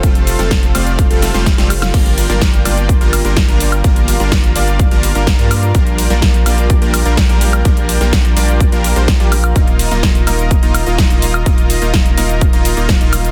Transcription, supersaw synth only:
X:1
M:4/4
L:1/16
Q:1/4=126
K:Bb
V:1 name="Supersaw synth"
[G,A,CFA]3 [G,A,CFA]3 [G,A,CFd]3 [G,A,CFA]2 [G,A,CFc] z [G,A,CFG] z2 | [G,B,DFB]3 [G,B,DFB]3 [G,B,DFd]3 [G,B,DFB]2 [G,B,DFB]2 [G,B,DFB]3 | [G,B,DFB]3 [G,B,DFB]3 [G,B,DFd]3 [G,B,DFB]2 [G,B,DFB]2 [G,B,DFB]3 | [G,B,DFB]3 [G,B,DFB]3 [G,B,DFd]3 [G,B,DFB]2 [G,B,DFB]2 [G,B,DFB]3 |
[G,B,DFB]3 [G,B,DFB]3 [G,B,DFd]3 [G,B,DFB]2 [G,B,DFc] z [G,B,DFG] z2 | [B,EF]3 [B,EF]3 [B,EB]3 [B,EF]2 [B,EF]2 [B,EF]3 | [B,EF]3 [B,EF]3 [B,EB]3 [B,EF]2 [B,EF]2 [B,EF]3 |]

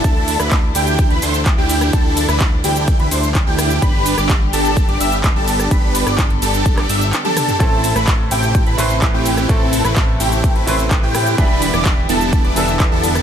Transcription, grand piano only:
X:1
M:4/4
L:1/8
Q:1/4=127
K:Am
V:1 name="Grand piano"
z8 | z8 | z8 | z8 |
[A,,A,CEA]4- [A,,A,CEA] [A,,A,CEB]3 | [A,,A,CEA]4- [A,,A,CEA] [A,,A,CEB]3 | [E,B,DEG]4- [E,B,DEG] [E,B,DEA]3 |]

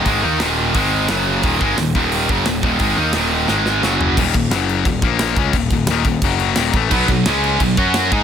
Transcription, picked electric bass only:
X:1
M:4/4
L:1/8
Q:1/4=175
K:Ebm
V:1 name="Picked electric bass" clef=bass
A,,, E,, E,,,2 A,,,2 G,,,2 | E,,, A,,, E,,, E,,,2 G,,, E,,, E,,, | A,,, E,, E,,,2 A,,,2 G,,,2 | E,,, E,,, G,,,2 E,,, B,,,2 D,, |
E,,, E,,, E,,, E,,, G,,,2 E,,, =A,,, | =B,,, B,,, D,,2 B,,, G,,2 A,, |]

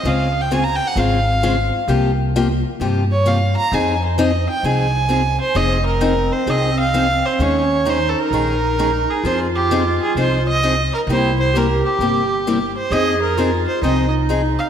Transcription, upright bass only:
X:1
M:4/4
L:1/8
Q:"Swing" 1/4=131
K:Fm
V:1 name="Upright bass" clef=bass
D,,4 A,,,4 | C,,4 G,,4 | F,,4 C,,4 | F,,,4 C,,4 |
E,,4 B,,,4 | F,,4 C,,4 | C,,4 G,,,4 | F,,4 C,,4 |]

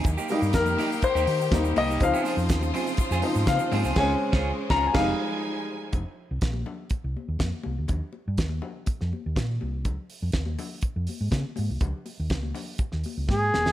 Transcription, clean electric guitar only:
X:1
M:4/4
L:1/16
Q:1/4=122
K:Fm
V:1 name="Clean electric guitar"
z [B,EG] [B,EG] z3 [B,EG]2 z [B,EG]2 z3 [B,EG] [B,EG] | z [CFA] [CFA] z3 [CFA]2 z [CFA]2 z3 [CFA] [CFA] | [DFA]2 z [DFA]2 z [DFA]2 [CEA]2 z6 | z16 |
z16 | z16 | z16 |]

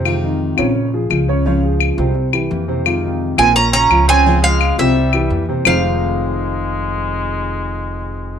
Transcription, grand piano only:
X:1
M:4/4
L:1/8
Q:1/4=172
K:Fm
V:1 name="Grand piano"
[C,Cc] [E,EF]2 [D,Dd]2 [F,FA]2 [D,Dd] | [D,Dd] [F,FA]2 [C,Cc]2 [=E,=EG]2 [C,Cc] | z [E,EF]2 [B,,B,B]2 [D,DF]2 [D,Dd] | [D,Dd] [F,FA]2 [C,Cc]2 [=E,=EG]2 [C,Cc] |
[F,CEFAc]8- | [F,CEFAc]8 |]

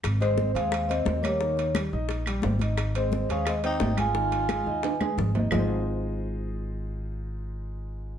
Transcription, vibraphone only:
X:1
M:4/4
L:1/8
Q:1/4=175
K:Ab
V:1 name="Vibraphone"
z c2 f2 e2 d- | d2 z6 | z c2 f e g2 a- | a6 z2 |
z8 | z8 |]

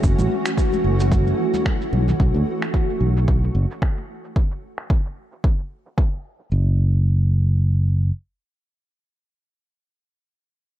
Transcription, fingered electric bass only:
X:1
M:4/4
L:1/16
Q:"Swing 16ths" 1/4=111
K:Bdor
V:1 name="Fingered electric bass" clef=bass
F,,, A,,, z4 F,,,3 z4 z B,,, z | B,,, D,, z4 B,,,3 z F,,, z4 z | z16 | F,,,12 z4 |
z16 |]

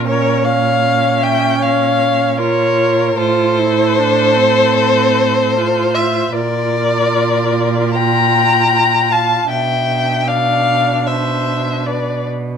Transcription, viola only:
X:1
M:4/4
L:1/8
Q:1/4=76
K:F
V:1 name="Viola"
_D2 D4 F2 | F E D C3 F2 | F8 | D8 |]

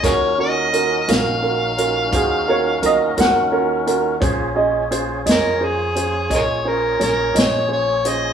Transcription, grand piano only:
X:1
M:12/8
L:1/8
Q:3/8=57
K:Bbm
V:1 name="Grand piano"
[DFGB] [DFGB] [DFGB] [DFGB] [DFGB] [DFGB] [DFGc] [DFGB] [DFGB] [DFGB] [DFGB] [DFGB] | [DFAc] [DFAe] [DFAc] [DFAe] [DFAc] [DFAc] [DFAe] [DFAc] [DFAd] [DFAe] [DFAc] [DFAc] |]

